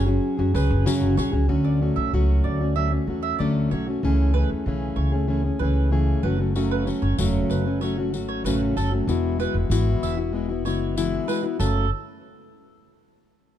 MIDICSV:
0, 0, Header, 1, 6, 480
1, 0, Start_track
1, 0, Key_signature, 3, "minor"
1, 0, Tempo, 631579
1, 1137, Time_signature, 4, 2, 24, 8
1, 10323, End_track
2, 0, Start_track
2, 0, Title_t, "Mandolin"
2, 0, Program_c, 0, 25
2, 416, Note_on_c, 0, 71, 80
2, 644, Note_off_c, 0, 71, 0
2, 892, Note_on_c, 0, 73, 88
2, 1008, Note_off_c, 0, 73, 0
2, 1250, Note_on_c, 0, 74, 65
2, 1367, Note_off_c, 0, 74, 0
2, 1489, Note_on_c, 0, 76, 66
2, 1607, Note_off_c, 0, 76, 0
2, 1854, Note_on_c, 0, 74, 60
2, 2084, Note_off_c, 0, 74, 0
2, 2096, Note_on_c, 0, 76, 75
2, 2211, Note_off_c, 0, 76, 0
2, 2451, Note_on_c, 0, 76, 68
2, 2569, Note_off_c, 0, 76, 0
2, 2574, Note_on_c, 0, 74, 62
2, 2690, Note_off_c, 0, 74, 0
2, 2821, Note_on_c, 0, 73, 71
2, 2934, Note_off_c, 0, 73, 0
2, 3296, Note_on_c, 0, 71, 88
2, 3412, Note_off_c, 0, 71, 0
2, 3770, Note_on_c, 0, 73, 68
2, 3888, Note_off_c, 0, 73, 0
2, 4251, Note_on_c, 0, 71, 73
2, 4483, Note_off_c, 0, 71, 0
2, 4736, Note_on_c, 0, 71, 77
2, 4852, Note_off_c, 0, 71, 0
2, 5102, Note_on_c, 0, 71, 69
2, 5215, Note_off_c, 0, 71, 0
2, 5335, Note_on_c, 0, 73, 74
2, 5451, Note_off_c, 0, 73, 0
2, 5697, Note_on_c, 0, 71, 62
2, 5926, Note_off_c, 0, 71, 0
2, 5936, Note_on_c, 0, 73, 85
2, 6052, Note_off_c, 0, 73, 0
2, 6296, Note_on_c, 0, 73, 65
2, 6412, Note_off_c, 0, 73, 0
2, 6421, Note_on_c, 0, 71, 66
2, 6534, Note_off_c, 0, 71, 0
2, 6663, Note_on_c, 0, 69, 89
2, 6775, Note_off_c, 0, 69, 0
2, 7141, Note_on_c, 0, 71, 92
2, 7255, Note_off_c, 0, 71, 0
2, 7622, Note_on_c, 0, 76, 70
2, 7735, Note_off_c, 0, 76, 0
2, 8094, Note_on_c, 0, 73, 76
2, 8325, Note_off_c, 0, 73, 0
2, 8572, Note_on_c, 0, 71, 83
2, 8689, Note_off_c, 0, 71, 0
2, 8813, Note_on_c, 0, 69, 86
2, 9039, Note_off_c, 0, 69, 0
2, 10323, End_track
3, 0, Start_track
3, 0, Title_t, "Marimba"
3, 0, Program_c, 1, 12
3, 0, Note_on_c, 1, 68, 87
3, 637, Note_off_c, 1, 68, 0
3, 10323, End_track
4, 0, Start_track
4, 0, Title_t, "Steel-string acoustic guitar"
4, 0, Program_c, 2, 25
4, 47, Note_on_c, 2, 68, 66
4, 50, Note_on_c, 2, 66, 57
4, 61, Note_on_c, 2, 61, 61
4, 64, Note_on_c, 2, 54, 47
4, 274, Note_off_c, 2, 68, 0
4, 283, Note_on_c, 2, 68, 61
4, 287, Note_off_c, 2, 66, 0
4, 292, Note_off_c, 2, 61, 0
4, 295, Note_off_c, 2, 54, 0
4, 296, Note_on_c, 2, 66, 60
4, 301, Note_on_c, 2, 61, 63
4, 304, Note_on_c, 2, 54, 53
4, 400, Note_off_c, 2, 54, 0
4, 405, Note_off_c, 2, 61, 0
4, 409, Note_on_c, 2, 54, 69
4, 410, Note_off_c, 2, 68, 0
4, 412, Note_off_c, 2, 66, 0
4, 414, Note_on_c, 2, 61, 73
4, 421, Note_on_c, 2, 66, 67
4, 425, Note_on_c, 2, 68, 74
4, 646, Note_off_c, 2, 54, 0
4, 649, Note_on_c, 2, 42, 96
4, 650, Note_off_c, 2, 66, 0
4, 651, Note_off_c, 2, 61, 0
4, 651, Note_on_c, 2, 49, 94
4, 654, Note_off_c, 2, 68, 0
4, 655, Note_on_c, 2, 54, 99
4, 659, Note_on_c, 2, 66, 102
4, 660, Note_on_c, 2, 61, 100
4, 663, Note_on_c, 2, 68, 97
4, 884, Note_off_c, 2, 54, 0
4, 892, Note_off_c, 2, 61, 0
4, 893, Note_off_c, 2, 42, 0
4, 893, Note_on_c, 2, 54, 75
4, 894, Note_off_c, 2, 49, 0
4, 898, Note_off_c, 2, 66, 0
4, 900, Note_off_c, 2, 68, 0
4, 902, Note_on_c, 2, 61, 74
4, 907, Note_on_c, 2, 66, 82
4, 912, Note_on_c, 2, 68, 77
4, 994, Note_off_c, 2, 68, 0
4, 1003, Note_off_c, 2, 66, 0
4, 1003, Note_on_c, 2, 68, 66
4, 1011, Note_off_c, 2, 61, 0
4, 1012, Note_off_c, 2, 54, 0
4, 1012, Note_on_c, 2, 66, 62
4, 1020, Note_on_c, 2, 61, 54
4, 1021, Note_on_c, 2, 54, 51
4, 1116, Note_off_c, 2, 54, 0
4, 1123, Note_on_c, 2, 50, 76
4, 1125, Note_off_c, 2, 61, 0
4, 1125, Note_on_c, 2, 54, 79
4, 1128, Note_off_c, 2, 66, 0
4, 1130, Note_off_c, 2, 68, 0
4, 1132, Note_on_c, 2, 57, 82
4, 1134, Note_on_c, 2, 61, 87
4, 1137, Note_on_c, 2, 66, 79
4, 1359, Note_off_c, 2, 54, 0
4, 1369, Note_on_c, 2, 54, 59
4, 1370, Note_off_c, 2, 50, 0
4, 1372, Note_off_c, 2, 57, 0
4, 1376, Note_off_c, 2, 61, 0
4, 1377, Note_off_c, 2, 66, 0
4, 1381, Note_on_c, 2, 57, 67
4, 1385, Note_on_c, 2, 61, 65
4, 1388, Note_on_c, 2, 66, 75
4, 1613, Note_off_c, 2, 54, 0
4, 1619, Note_off_c, 2, 57, 0
4, 1620, Note_off_c, 2, 66, 0
4, 1621, Note_off_c, 2, 61, 0
4, 1623, Note_on_c, 2, 54, 90
4, 1629, Note_on_c, 2, 57, 86
4, 1629, Note_on_c, 2, 66, 95
4, 1630, Note_on_c, 2, 61, 96
4, 1973, Note_off_c, 2, 66, 0
4, 1981, Note_off_c, 2, 54, 0
4, 1983, Note_off_c, 2, 57, 0
4, 1983, Note_on_c, 2, 66, 50
4, 1984, Note_off_c, 2, 61, 0
4, 1993, Note_on_c, 2, 61, 52
4, 2005, Note_on_c, 2, 57, 45
4, 2093, Note_on_c, 2, 54, 67
4, 2095, Note_off_c, 2, 57, 0
4, 2098, Note_off_c, 2, 61, 0
4, 2100, Note_off_c, 2, 66, 0
4, 2104, Note_on_c, 2, 57, 71
4, 2107, Note_on_c, 2, 61, 76
4, 2112, Note_on_c, 2, 66, 72
4, 2200, Note_off_c, 2, 66, 0
4, 2209, Note_on_c, 2, 66, 54
4, 2212, Note_off_c, 2, 61, 0
4, 2215, Note_off_c, 2, 54, 0
4, 2221, Note_off_c, 2, 57, 0
4, 2221, Note_on_c, 2, 61, 49
4, 2230, Note_on_c, 2, 57, 50
4, 2330, Note_off_c, 2, 57, 0
4, 2334, Note_off_c, 2, 66, 0
4, 2334, Note_on_c, 2, 54, 55
4, 2339, Note_off_c, 2, 61, 0
4, 2340, Note_on_c, 2, 57, 60
4, 2351, Note_on_c, 2, 61, 60
4, 2355, Note_on_c, 2, 66, 60
4, 2576, Note_off_c, 2, 54, 0
4, 2577, Note_off_c, 2, 57, 0
4, 2579, Note_on_c, 2, 50, 85
4, 2581, Note_off_c, 2, 61, 0
4, 2586, Note_on_c, 2, 54, 85
4, 2586, Note_on_c, 2, 57, 97
4, 2587, Note_off_c, 2, 66, 0
4, 2591, Note_on_c, 2, 61, 95
4, 2595, Note_on_c, 2, 66, 98
4, 2808, Note_off_c, 2, 54, 0
4, 2817, Note_on_c, 2, 54, 66
4, 2819, Note_off_c, 2, 50, 0
4, 2821, Note_off_c, 2, 57, 0
4, 2825, Note_off_c, 2, 61, 0
4, 2827, Note_off_c, 2, 66, 0
4, 2830, Note_on_c, 2, 57, 75
4, 2834, Note_on_c, 2, 61, 73
4, 2841, Note_on_c, 2, 66, 71
4, 2932, Note_off_c, 2, 66, 0
4, 2938, Note_off_c, 2, 54, 0
4, 2942, Note_on_c, 2, 66, 56
4, 2944, Note_off_c, 2, 57, 0
4, 2946, Note_off_c, 2, 61, 0
4, 2954, Note_on_c, 2, 61, 51
4, 2965, Note_on_c, 2, 57, 46
4, 3058, Note_off_c, 2, 57, 0
4, 3060, Note_off_c, 2, 66, 0
4, 3061, Note_on_c, 2, 49, 77
4, 3066, Note_off_c, 2, 61, 0
4, 3068, Note_on_c, 2, 52, 80
4, 3068, Note_on_c, 2, 57, 90
4, 3075, Note_on_c, 2, 61, 97
4, 3080, Note_on_c, 2, 68, 93
4, 3288, Note_off_c, 2, 52, 0
4, 3293, Note_off_c, 2, 57, 0
4, 3297, Note_on_c, 2, 52, 65
4, 3300, Note_off_c, 2, 49, 0
4, 3300, Note_off_c, 2, 61, 0
4, 3303, Note_on_c, 2, 57, 62
4, 3309, Note_off_c, 2, 68, 0
4, 3310, Note_on_c, 2, 61, 60
4, 3320, Note_on_c, 2, 68, 65
4, 3538, Note_off_c, 2, 52, 0
4, 3541, Note_off_c, 2, 57, 0
4, 3544, Note_off_c, 2, 61, 0
4, 3544, Note_on_c, 2, 49, 93
4, 3546, Note_on_c, 2, 52, 97
4, 3549, Note_on_c, 2, 57, 90
4, 3550, Note_off_c, 2, 68, 0
4, 3554, Note_on_c, 2, 61, 86
4, 3559, Note_on_c, 2, 68, 101
4, 3882, Note_off_c, 2, 68, 0
4, 3891, Note_on_c, 2, 68, 61
4, 3895, Note_off_c, 2, 61, 0
4, 3902, Note_off_c, 2, 49, 0
4, 3903, Note_off_c, 2, 52, 0
4, 3904, Note_off_c, 2, 57, 0
4, 3904, Note_on_c, 2, 61, 60
4, 3916, Note_on_c, 2, 57, 48
4, 4004, Note_off_c, 2, 57, 0
4, 4008, Note_on_c, 2, 52, 65
4, 4014, Note_on_c, 2, 57, 76
4, 4015, Note_off_c, 2, 61, 0
4, 4015, Note_off_c, 2, 68, 0
4, 4024, Note_on_c, 2, 61, 76
4, 4028, Note_on_c, 2, 68, 82
4, 4123, Note_off_c, 2, 68, 0
4, 4132, Note_on_c, 2, 68, 51
4, 4134, Note_off_c, 2, 52, 0
4, 4134, Note_off_c, 2, 61, 0
4, 4137, Note_off_c, 2, 57, 0
4, 4144, Note_on_c, 2, 61, 51
4, 4152, Note_on_c, 2, 57, 45
4, 4253, Note_on_c, 2, 52, 60
4, 4255, Note_off_c, 2, 57, 0
4, 4256, Note_off_c, 2, 68, 0
4, 4259, Note_off_c, 2, 61, 0
4, 4264, Note_on_c, 2, 57, 61
4, 4268, Note_on_c, 2, 61, 64
4, 4273, Note_on_c, 2, 68, 70
4, 4485, Note_off_c, 2, 52, 0
4, 4490, Note_off_c, 2, 57, 0
4, 4490, Note_on_c, 2, 49, 76
4, 4492, Note_off_c, 2, 61, 0
4, 4494, Note_on_c, 2, 52, 78
4, 4495, Note_off_c, 2, 68, 0
4, 4500, Note_on_c, 2, 57, 84
4, 4501, Note_on_c, 2, 61, 97
4, 4504, Note_on_c, 2, 68, 96
4, 4734, Note_off_c, 2, 52, 0
4, 4735, Note_off_c, 2, 49, 0
4, 4736, Note_off_c, 2, 57, 0
4, 4737, Note_on_c, 2, 54, 73
4, 4741, Note_off_c, 2, 61, 0
4, 4742, Note_off_c, 2, 68, 0
4, 4746, Note_on_c, 2, 57, 66
4, 4750, Note_on_c, 2, 61, 74
4, 4754, Note_on_c, 2, 66, 81
4, 4849, Note_off_c, 2, 66, 0
4, 4855, Note_off_c, 2, 61, 0
4, 4858, Note_on_c, 2, 66, 55
4, 4859, Note_off_c, 2, 54, 0
4, 4863, Note_off_c, 2, 57, 0
4, 4864, Note_on_c, 2, 61, 57
4, 4874, Note_on_c, 2, 57, 56
4, 4878, Note_on_c, 2, 54, 48
4, 4974, Note_off_c, 2, 54, 0
4, 4974, Note_on_c, 2, 42, 85
4, 4977, Note_off_c, 2, 57, 0
4, 4977, Note_off_c, 2, 61, 0
4, 4978, Note_on_c, 2, 49, 78
4, 4979, Note_off_c, 2, 66, 0
4, 4983, Note_on_c, 2, 54, 89
4, 4986, Note_on_c, 2, 57, 91
4, 4986, Note_on_c, 2, 61, 90
4, 4988, Note_on_c, 2, 66, 94
4, 5203, Note_off_c, 2, 54, 0
4, 5211, Note_off_c, 2, 57, 0
4, 5211, Note_off_c, 2, 61, 0
4, 5212, Note_on_c, 2, 54, 71
4, 5217, Note_off_c, 2, 42, 0
4, 5219, Note_off_c, 2, 49, 0
4, 5220, Note_off_c, 2, 66, 0
4, 5220, Note_on_c, 2, 57, 68
4, 5221, Note_on_c, 2, 61, 64
4, 5230, Note_on_c, 2, 66, 67
4, 5453, Note_off_c, 2, 54, 0
4, 5458, Note_off_c, 2, 57, 0
4, 5459, Note_on_c, 2, 42, 93
4, 5460, Note_off_c, 2, 61, 0
4, 5461, Note_on_c, 2, 49, 94
4, 5463, Note_on_c, 2, 54, 104
4, 5465, Note_off_c, 2, 66, 0
4, 5467, Note_on_c, 2, 57, 100
4, 5470, Note_on_c, 2, 61, 101
4, 5475, Note_on_c, 2, 66, 95
4, 5805, Note_off_c, 2, 66, 0
4, 5814, Note_off_c, 2, 61, 0
4, 5814, Note_on_c, 2, 66, 58
4, 5819, Note_off_c, 2, 42, 0
4, 5821, Note_off_c, 2, 49, 0
4, 5821, Note_off_c, 2, 54, 0
4, 5823, Note_on_c, 2, 61, 64
4, 5824, Note_off_c, 2, 57, 0
4, 5832, Note_on_c, 2, 57, 51
4, 5833, Note_on_c, 2, 54, 54
4, 5932, Note_off_c, 2, 54, 0
4, 5937, Note_off_c, 2, 66, 0
4, 5938, Note_off_c, 2, 57, 0
4, 5941, Note_off_c, 2, 61, 0
4, 5942, Note_on_c, 2, 54, 73
4, 5947, Note_on_c, 2, 57, 74
4, 5950, Note_on_c, 2, 61, 81
4, 5960, Note_on_c, 2, 66, 76
4, 6055, Note_off_c, 2, 66, 0
4, 6061, Note_off_c, 2, 54, 0
4, 6064, Note_off_c, 2, 57, 0
4, 6064, Note_on_c, 2, 66, 67
4, 6065, Note_off_c, 2, 61, 0
4, 6075, Note_on_c, 2, 61, 59
4, 6080, Note_on_c, 2, 57, 49
4, 6089, Note_on_c, 2, 54, 51
4, 6168, Note_off_c, 2, 54, 0
4, 6175, Note_off_c, 2, 57, 0
4, 6177, Note_on_c, 2, 54, 69
4, 6182, Note_off_c, 2, 61, 0
4, 6182, Note_off_c, 2, 66, 0
4, 6184, Note_on_c, 2, 57, 61
4, 6191, Note_on_c, 2, 61, 65
4, 6199, Note_on_c, 2, 66, 76
4, 6419, Note_off_c, 2, 54, 0
4, 6422, Note_off_c, 2, 57, 0
4, 6426, Note_off_c, 2, 61, 0
4, 6426, Note_on_c, 2, 42, 91
4, 6429, Note_on_c, 2, 49, 86
4, 6430, Note_off_c, 2, 66, 0
4, 6432, Note_on_c, 2, 57, 100
4, 6435, Note_on_c, 2, 54, 96
4, 6435, Note_on_c, 2, 61, 102
4, 6439, Note_on_c, 2, 66, 94
4, 6648, Note_off_c, 2, 54, 0
4, 6655, Note_off_c, 2, 57, 0
4, 6657, Note_on_c, 2, 54, 70
4, 6663, Note_off_c, 2, 42, 0
4, 6664, Note_on_c, 2, 57, 79
4, 6665, Note_off_c, 2, 49, 0
4, 6665, Note_off_c, 2, 61, 0
4, 6665, Note_off_c, 2, 66, 0
4, 6674, Note_on_c, 2, 61, 77
4, 6675, Note_on_c, 2, 66, 77
4, 6769, Note_off_c, 2, 66, 0
4, 6778, Note_off_c, 2, 54, 0
4, 6778, Note_off_c, 2, 61, 0
4, 6779, Note_on_c, 2, 66, 67
4, 6782, Note_off_c, 2, 57, 0
4, 6787, Note_on_c, 2, 61, 50
4, 6799, Note_on_c, 2, 57, 56
4, 6801, Note_on_c, 2, 54, 51
4, 6896, Note_off_c, 2, 54, 0
4, 6897, Note_on_c, 2, 52, 88
4, 6899, Note_off_c, 2, 66, 0
4, 6899, Note_on_c, 2, 56, 82
4, 6903, Note_off_c, 2, 57, 0
4, 6904, Note_off_c, 2, 61, 0
4, 6906, Note_on_c, 2, 59, 89
4, 6911, Note_on_c, 2, 64, 100
4, 6911, Note_on_c, 2, 66, 96
4, 7123, Note_off_c, 2, 56, 0
4, 7131, Note_off_c, 2, 59, 0
4, 7132, Note_on_c, 2, 56, 67
4, 7136, Note_off_c, 2, 64, 0
4, 7138, Note_off_c, 2, 52, 0
4, 7140, Note_on_c, 2, 59, 60
4, 7142, Note_off_c, 2, 66, 0
4, 7145, Note_on_c, 2, 64, 66
4, 7151, Note_on_c, 2, 66, 77
4, 7365, Note_off_c, 2, 56, 0
4, 7371, Note_off_c, 2, 59, 0
4, 7371, Note_on_c, 2, 52, 95
4, 7374, Note_on_c, 2, 56, 98
4, 7376, Note_off_c, 2, 64, 0
4, 7377, Note_off_c, 2, 66, 0
4, 7380, Note_on_c, 2, 59, 92
4, 7385, Note_on_c, 2, 64, 96
4, 7386, Note_on_c, 2, 66, 108
4, 7721, Note_off_c, 2, 66, 0
4, 7730, Note_off_c, 2, 64, 0
4, 7730, Note_on_c, 2, 66, 61
4, 7735, Note_off_c, 2, 52, 0
4, 7737, Note_off_c, 2, 56, 0
4, 7739, Note_on_c, 2, 64, 60
4, 7740, Note_off_c, 2, 59, 0
4, 7751, Note_on_c, 2, 59, 46
4, 7847, Note_off_c, 2, 59, 0
4, 7849, Note_on_c, 2, 56, 70
4, 7855, Note_off_c, 2, 66, 0
4, 7857, Note_on_c, 2, 59, 79
4, 7859, Note_off_c, 2, 64, 0
4, 7867, Note_on_c, 2, 64, 73
4, 7870, Note_on_c, 2, 66, 85
4, 7960, Note_off_c, 2, 66, 0
4, 7969, Note_on_c, 2, 66, 57
4, 7970, Note_off_c, 2, 64, 0
4, 7974, Note_off_c, 2, 56, 0
4, 7978, Note_off_c, 2, 59, 0
4, 7979, Note_on_c, 2, 64, 53
4, 7994, Note_on_c, 2, 59, 49
4, 8094, Note_off_c, 2, 66, 0
4, 8095, Note_off_c, 2, 59, 0
4, 8095, Note_on_c, 2, 56, 66
4, 8099, Note_off_c, 2, 64, 0
4, 8104, Note_on_c, 2, 59, 67
4, 8110, Note_on_c, 2, 64, 68
4, 8114, Note_on_c, 2, 66, 71
4, 8332, Note_off_c, 2, 56, 0
4, 8334, Note_on_c, 2, 52, 96
4, 8335, Note_off_c, 2, 59, 0
4, 8335, Note_off_c, 2, 64, 0
4, 8337, Note_off_c, 2, 66, 0
4, 8342, Note_on_c, 2, 56, 89
4, 8344, Note_on_c, 2, 59, 84
4, 8344, Note_on_c, 2, 64, 104
4, 8346, Note_on_c, 2, 66, 98
4, 8566, Note_off_c, 2, 56, 0
4, 8570, Note_off_c, 2, 59, 0
4, 8575, Note_on_c, 2, 56, 72
4, 8577, Note_off_c, 2, 52, 0
4, 8578, Note_off_c, 2, 64, 0
4, 8579, Note_on_c, 2, 59, 74
4, 8583, Note_off_c, 2, 66, 0
4, 8587, Note_on_c, 2, 64, 74
4, 8594, Note_on_c, 2, 66, 76
4, 8674, Note_off_c, 2, 66, 0
4, 8684, Note_on_c, 2, 66, 56
4, 8686, Note_off_c, 2, 64, 0
4, 8696, Note_on_c, 2, 64, 58
4, 8697, Note_off_c, 2, 56, 0
4, 8699, Note_off_c, 2, 59, 0
4, 8708, Note_on_c, 2, 59, 47
4, 8808, Note_on_c, 2, 42, 79
4, 8811, Note_off_c, 2, 66, 0
4, 8811, Note_on_c, 2, 49, 83
4, 8815, Note_off_c, 2, 59, 0
4, 8815, Note_on_c, 2, 54, 83
4, 8817, Note_off_c, 2, 64, 0
4, 8818, Note_on_c, 2, 57, 93
4, 8821, Note_on_c, 2, 61, 78
4, 8821, Note_on_c, 2, 66, 82
4, 9006, Note_off_c, 2, 42, 0
4, 9007, Note_off_c, 2, 49, 0
4, 9009, Note_off_c, 2, 54, 0
4, 9010, Note_off_c, 2, 57, 0
4, 9012, Note_off_c, 2, 61, 0
4, 9012, Note_off_c, 2, 66, 0
4, 10323, End_track
5, 0, Start_track
5, 0, Title_t, "Upright bass"
5, 0, Program_c, 3, 32
5, 0, Note_on_c, 3, 30, 86
5, 132, Note_off_c, 3, 30, 0
5, 294, Note_on_c, 3, 42, 97
5, 393, Note_off_c, 3, 42, 0
5, 414, Note_on_c, 3, 37, 102
5, 513, Note_off_c, 3, 37, 0
5, 535, Note_on_c, 3, 30, 96
5, 634, Note_off_c, 3, 30, 0
5, 772, Note_on_c, 3, 30, 90
5, 872, Note_off_c, 3, 30, 0
5, 893, Note_on_c, 3, 35, 93
5, 993, Note_off_c, 3, 35, 0
5, 1010, Note_on_c, 3, 37, 87
5, 1111, Note_off_c, 3, 37, 0
5, 1131, Note_on_c, 3, 38, 98
5, 1429, Note_off_c, 3, 38, 0
5, 1493, Note_on_c, 3, 35, 81
5, 1593, Note_off_c, 3, 35, 0
5, 1621, Note_on_c, 3, 37, 93
5, 1816, Note_off_c, 3, 37, 0
5, 1863, Note_on_c, 3, 38, 88
5, 2255, Note_off_c, 3, 38, 0
5, 2335, Note_on_c, 3, 40, 82
5, 2533, Note_off_c, 3, 40, 0
5, 2580, Note_on_c, 3, 38, 78
5, 2776, Note_off_c, 3, 38, 0
5, 2822, Note_on_c, 3, 35, 74
5, 3018, Note_off_c, 3, 35, 0
5, 3062, Note_on_c, 3, 37, 97
5, 3356, Note_off_c, 3, 37, 0
5, 3416, Note_on_c, 3, 40, 78
5, 3516, Note_off_c, 3, 40, 0
5, 3539, Note_on_c, 3, 35, 84
5, 3736, Note_off_c, 3, 35, 0
5, 3772, Note_on_c, 3, 37, 82
5, 4169, Note_off_c, 3, 37, 0
5, 4258, Note_on_c, 3, 37, 89
5, 4653, Note_off_c, 3, 37, 0
5, 4738, Note_on_c, 3, 30, 97
5, 5231, Note_off_c, 3, 30, 0
5, 5337, Note_on_c, 3, 30, 84
5, 5437, Note_off_c, 3, 30, 0
5, 5461, Note_on_c, 3, 28, 88
5, 5657, Note_off_c, 3, 28, 0
5, 5704, Note_on_c, 3, 30, 77
5, 6182, Note_off_c, 3, 30, 0
5, 6182, Note_on_c, 3, 32, 91
5, 6378, Note_off_c, 3, 32, 0
5, 6416, Note_on_c, 3, 33, 93
5, 6614, Note_off_c, 3, 33, 0
5, 6659, Note_on_c, 3, 30, 78
5, 6856, Note_off_c, 3, 30, 0
5, 6896, Note_on_c, 3, 28, 105
5, 7193, Note_off_c, 3, 28, 0
5, 7251, Note_on_c, 3, 28, 87
5, 7353, Note_off_c, 3, 28, 0
5, 7370, Note_on_c, 3, 32, 93
5, 7571, Note_off_c, 3, 32, 0
5, 7610, Note_on_c, 3, 28, 82
5, 8090, Note_off_c, 3, 28, 0
5, 8090, Note_on_c, 3, 30, 81
5, 8487, Note_off_c, 3, 30, 0
5, 8812, Note_on_c, 3, 30, 92
5, 9039, Note_off_c, 3, 30, 0
5, 10323, End_track
6, 0, Start_track
6, 0, Title_t, "Drums"
6, 423, Note_on_c, 9, 54, 44
6, 499, Note_off_c, 9, 54, 0
6, 664, Note_on_c, 9, 54, 73
6, 740, Note_off_c, 9, 54, 0
6, 901, Note_on_c, 9, 54, 55
6, 977, Note_off_c, 9, 54, 0
6, 4982, Note_on_c, 9, 54, 41
6, 5058, Note_off_c, 9, 54, 0
6, 5222, Note_on_c, 9, 54, 28
6, 5298, Note_off_c, 9, 54, 0
6, 5460, Note_on_c, 9, 54, 79
6, 5536, Note_off_c, 9, 54, 0
6, 5704, Note_on_c, 9, 54, 46
6, 5780, Note_off_c, 9, 54, 0
6, 5946, Note_on_c, 9, 54, 27
6, 6022, Note_off_c, 9, 54, 0
6, 6184, Note_on_c, 9, 54, 45
6, 6260, Note_off_c, 9, 54, 0
6, 6428, Note_on_c, 9, 54, 67
6, 6504, Note_off_c, 9, 54, 0
6, 6669, Note_on_c, 9, 54, 51
6, 6745, Note_off_c, 9, 54, 0
6, 6906, Note_on_c, 9, 54, 44
6, 6982, Note_off_c, 9, 54, 0
6, 7144, Note_on_c, 9, 54, 30
6, 7220, Note_off_c, 9, 54, 0
6, 7382, Note_on_c, 9, 54, 79
6, 7458, Note_off_c, 9, 54, 0
6, 7624, Note_on_c, 9, 54, 46
6, 7700, Note_off_c, 9, 54, 0
6, 8101, Note_on_c, 9, 54, 46
6, 8177, Note_off_c, 9, 54, 0
6, 8341, Note_on_c, 9, 54, 76
6, 8417, Note_off_c, 9, 54, 0
6, 8580, Note_on_c, 9, 54, 47
6, 8656, Note_off_c, 9, 54, 0
6, 8819, Note_on_c, 9, 54, 79
6, 8895, Note_off_c, 9, 54, 0
6, 10323, End_track
0, 0, End_of_file